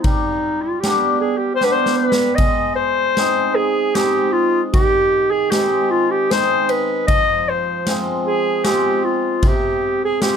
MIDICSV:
0, 0, Header, 1, 4, 480
1, 0, Start_track
1, 0, Tempo, 782269
1, 33, Time_signature, 3, 2, 24, 8
1, 6362, End_track
2, 0, Start_track
2, 0, Title_t, "Clarinet"
2, 0, Program_c, 0, 71
2, 14, Note_on_c, 0, 63, 93
2, 379, Note_on_c, 0, 65, 76
2, 388, Note_off_c, 0, 63, 0
2, 489, Note_on_c, 0, 67, 78
2, 499, Note_off_c, 0, 65, 0
2, 736, Note_off_c, 0, 67, 0
2, 740, Note_on_c, 0, 68, 83
2, 843, Note_on_c, 0, 67, 83
2, 852, Note_off_c, 0, 68, 0
2, 949, Note_off_c, 0, 67, 0
2, 953, Note_on_c, 0, 72, 100
2, 1005, Note_on_c, 0, 71, 96
2, 1014, Note_off_c, 0, 72, 0
2, 1059, Note_on_c, 0, 72, 108
2, 1068, Note_off_c, 0, 71, 0
2, 1206, Note_off_c, 0, 72, 0
2, 1210, Note_on_c, 0, 71, 92
2, 1443, Note_on_c, 0, 75, 108
2, 1452, Note_off_c, 0, 71, 0
2, 1688, Note_off_c, 0, 75, 0
2, 1691, Note_on_c, 0, 72, 93
2, 2179, Note_on_c, 0, 68, 92
2, 2188, Note_off_c, 0, 72, 0
2, 2428, Note_on_c, 0, 67, 104
2, 2437, Note_off_c, 0, 68, 0
2, 2652, Note_on_c, 0, 65, 88
2, 2661, Note_off_c, 0, 67, 0
2, 2829, Note_off_c, 0, 65, 0
2, 2904, Note_on_c, 0, 67, 111
2, 3256, Note_on_c, 0, 68, 104
2, 3265, Note_off_c, 0, 67, 0
2, 3381, Note_on_c, 0, 67, 90
2, 3390, Note_off_c, 0, 68, 0
2, 3624, Note_on_c, 0, 65, 91
2, 3633, Note_off_c, 0, 67, 0
2, 3746, Note_on_c, 0, 67, 94
2, 3755, Note_off_c, 0, 65, 0
2, 3873, Note_on_c, 0, 72, 111
2, 3883, Note_off_c, 0, 67, 0
2, 4110, Note_on_c, 0, 71, 85
2, 4119, Note_off_c, 0, 72, 0
2, 4336, Note_off_c, 0, 71, 0
2, 4340, Note_on_c, 0, 75, 115
2, 4596, Note_on_c, 0, 72, 84
2, 4605, Note_off_c, 0, 75, 0
2, 4908, Note_off_c, 0, 72, 0
2, 5073, Note_on_c, 0, 68, 102
2, 5306, Note_on_c, 0, 67, 96
2, 5315, Note_off_c, 0, 68, 0
2, 5551, Note_on_c, 0, 65, 78
2, 5560, Note_off_c, 0, 67, 0
2, 5812, Note_on_c, 0, 67, 95
2, 5821, Note_off_c, 0, 65, 0
2, 6160, Note_off_c, 0, 67, 0
2, 6164, Note_on_c, 0, 68, 93
2, 6266, Note_off_c, 0, 68, 0
2, 6270, Note_on_c, 0, 67, 79
2, 6362, Note_off_c, 0, 67, 0
2, 6362, End_track
3, 0, Start_track
3, 0, Title_t, "Hammered dulcimer"
3, 0, Program_c, 1, 15
3, 0, Note_on_c, 1, 53, 72
3, 0, Note_on_c, 1, 56, 62
3, 38, Note_on_c, 1, 55, 64
3, 63, Note_off_c, 1, 53, 0
3, 63, Note_off_c, 1, 56, 0
3, 506, Note_off_c, 1, 55, 0
3, 513, Note_on_c, 1, 55, 68
3, 517, Note_on_c, 1, 59, 47
3, 524, Note_on_c, 1, 62, 72
3, 755, Note_off_c, 1, 59, 0
3, 759, Note_off_c, 1, 62, 0
3, 983, Note_off_c, 1, 55, 0
3, 990, Note_on_c, 1, 55, 69
3, 999, Note_on_c, 1, 59, 58
3, 1003, Note_on_c, 1, 62, 69
3, 1237, Note_off_c, 1, 59, 0
3, 1239, Note_off_c, 1, 62, 0
3, 1469, Note_on_c, 1, 56, 61
3, 1505, Note_off_c, 1, 55, 0
3, 1941, Note_off_c, 1, 56, 0
3, 1948, Note_on_c, 1, 56, 63
3, 1951, Note_on_c, 1, 60, 59
3, 1957, Note_on_c, 1, 63, 76
3, 2192, Note_off_c, 1, 60, 0
3, 2196, Note_off_c, 1, 63, 0
3, 2422, Note_off_c, 1, 56, 0
3, 2429, Note_on_c, 1, 56, 70
3, 2430, Note_on_c, 1, 60, 59
3, 2442, Note_on_c, 1, 63, 77
3, 2672, Note_off_c, 1, 60, 0
3, 2678, Note_off_c, 1, 63, 0
3, 2906, Note_on_c, 1, 51, 67
3, 2945, Note_off_c, 1, 56, 0
3, 3388, Note_on_c, 1, 56, 59
3, 3397, Note_on_c, 1, 60, 55
3, 3403, Note_on_c, 1, 63, 63
3, 3635, Note_off_c, 1, 60, 0
3, 3638, Note_off_c, 1, 63, 0
3, 3863, Note_off_c, 1, 56, 0
3, 3870, Note_on_c, 1, 56, 65
3, 3871, Note_on_c, 1, 60, 53
3, 3879, Note_on_c, 1, 63, 75
3, 4112, Note_off_c, 1, 60, 0
3, 4116, Note_off_c, 1, 63, 0
3, 4354, Note_on_c, 1, 53, 73
3, 4384, Note_off_c, 1, 51, 0
3, 4384, Note_off_c, 1, 56, 0
3, 4841, Note_on_c, 1, 56, 63
3, 4843, Note_on_c, 1, 60, 60
3, 4847, Note_on_c, 1, 65, 66
3, 5078, Note_off_c, 1, 60, 0
3, 5080, Note_off_c, 1, 65, 0
3, 5300, Note_off_c, 1, 56, 0
3, 5308, Note_on_c, 1, 56, 76
3, 5312, Note_on_c, 1, 60, 61
3, 5315, Note_on_c, 1, 65, 79
3, 5553, Note_off_c, 1, 60, 0
3, 5554, Note_off_c, 1, 65, 0
3, 5791, Note_on_c, 1, 48, 64
3, 5824, Note_off_c, 1, 53, 0
3, 6260, Note_off_c, 1, 56, 0
3, 6267, Note_on_c, 1, 56, 55
3, 6273, Note_on_c, 1, 60, 58
3, 6279, Note_on_c, 1, 65, 72
3, 6362, Note_off_c, 1, 48, 0
3, 6362, Note_off_c, 1, 56, 0
3, 6362, Note_off_c, 1, 60, 0
3, 6362, Note_off_c, 1, 65, 0
3, 6362, End_track
4, 0, Start_track
4, 0, Title_t, "Drums"
4, 25, Note_on_c, 9, 51, 54
4, 27, Note_on_c, 9, 36, 95
4, 86, Note_off_c, 9, 51, 0
4, 88, Note_off_c, 9, 36, 0
4, 512, Note_on_c, 9, 38, 64
4, 512, Note_on_c, 9, 51, 49
4, 574, Note_off_c, 9, 38, 0
4, 574, Note_off_c, 9, 51, 0
4, 988, Note_on_c, 9, 38, 39
4, 1049, Note_off_c, 9, 38, 0
4, 1141, Note_on_c, 9, 38, 48
4, 1202, Note_off_c, 9, 38, 0
4, 1300, Note_on_c, 9, 38, 68
4, 1361, Note_off_c, 9, 38, 0
4, 1460, Note_on_c, 9, 51, 56
4, 1463, Note_on_c, 9, 36, 91
4, 1521, Note_off_c, 9, 51, 0
4, 1525, Note_off_c, 9, 36, 0
4, 1944, Note_on_c, 9, 38, 58
4, 1944, Note_on_c, 9, 51, 43
4, 2005, Note_off_c, 9, 38, 0
4, 2005, Note_off_c, 9, 51, 0
4, 2425, Note_on_c, 9, 38, 61
4, 2425, Note_on_c, 9, 51, 46
4, 2486, Note_off_c, 9, 38, 0
4, 2486, Note_off_c, 9, 51, 0
4, 2906, Note_on_c, 9, 51, 54
4, 2907, Note_on_c, 9, 36, 103
4, 2967, Note_off_c, 9, 51, 0
4, 2968, Note_off_c, 9, 36, 0
4, 3385, Note_on_c, 9, 38, 66
4, 3385, Note_on_c, 9, 51, 56
4, 3446, Note_off_c, 9, 38, 0
4, 3446, Note_off_c, 9, 51, 0
4, 3873, Note_on_c, 9, 38, 64
4, 3873, Note_on_c, 9, 51, 46
4, 3934, Note_off_c, 9, 38, 0
4, 3934, Note_off_c, 9, 51, 0
4, 4104, Note_on_c, 9, 51, 46
4, 4166, Note_off_c, 9, 51, 0
4, 4345, Note_on_c, 9, 51, 61
4, 4346, Note_on_c, 9, 36, 98
4, 4407, Note_off_c, 9, 36, 0
4, 4407, Note_off_c, 9, 51, 0
4, 4826, Note_on_c, 9, 38, 66
4, 4826, Note_on_c, 9, 51, 49
4, 4888, Note_off_c, 9, 38, 0
4, 4888, Note_off_c, 9, 51, 0
4, 5304, Note_on_c, 9, 38, 59
4, 5304, Note_on_c, 9, 51, 49
4, 5365, Note_off_c, 9, 38, 0
4, 5365, Note_off_c, 9, 51, 0
4, 5784, Note_on_c, 9, 51, 51
4, 5785, Note_on_c, 9, 36, 98
4, 5845, Note_off_c, 9, 51, 0
4, 5846, Note_off_c, 9, 36, 0
4, 6268, Note_on_c, 9, 38, 68
4, 6268, Note_on_c, 9, 51, 44
4, 6330, Note_off_c, 9, 38, 0
4, 6330, Note_off_c, 9, 51, 0
4, 6362, End_track
0, 0, End_of_file